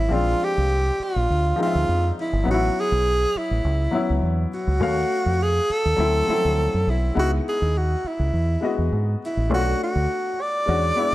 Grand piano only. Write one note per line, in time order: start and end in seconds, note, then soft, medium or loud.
0.00 0.12 F#3 medium
0.00 0.10 G#3 medium
0.00 0.12 B3 medium
0.00 0.13 C#4 medium
0.09 0.87 F3 medium
0.09 0.88 G#3 medium
0.09 0.88 C4 medium
0.09 0.89 D4 medium
1.56 2.14 F3 medium
1.56 2.15 G#3 medium
1.56 2.16 C4 medium
1.56 1.65 D#4 medium
1.66 2.19 E5 medium
2.44 3.22 F#3 medium
2.44 3.23 B3 medium
2.44 3.23 C#4 medium
2.44 2.54 D#4 medium
2.54 3.27 E4 medium
3.91 4.49 F#3 medium
3.91 4.50 B3 medium
3.91 4.51 C#4 medium
3.91 4.51 E4 medium
4.80 5.58 A3 medium
4.80 5.59 C#4 medium
4.80 5.58 F#4 medium
4.80 5.59 F5 medium
5.96 6.21 F#3 medium
5.96 6.22 A3 medium
5.96 6.23 C4 medium
5.96 6.23 E4 medium
6.27 6.34 F3 medium
6.27 6.85 A3 medium
6.27 6.86 C4 medium
6.27 6.86 E4 medium
6.33 6.88 F#3 medium
7.14 7.92 G#3 medium
7.14 7.93 B3 medium
7.14 7.93 D#4 medium
7.14 7.94 E4 medium
8.61 9.19 G#3 medium
8.61 9.20 B3 medium
8.61 9.21 F#4 medium
8.61 9.20 D#5 medium
9.50 10.27 A3 medium
9.50 10.28 C#4 medium
9.50 10.29 D4 medium
9.50 9.59 F4 medium
9.60 10.32 F#4 medium
10.66 10.91 G#3 medium
10.66 10.92 C#4 medium
10.66 10.92 D4 medium
10.66 10.93 F#4 medium
10.95 11.15 G#3 medium
10.95 11.15 B3 medium
10.95 11.15 D4 medium
10.95 11.15 E4 medium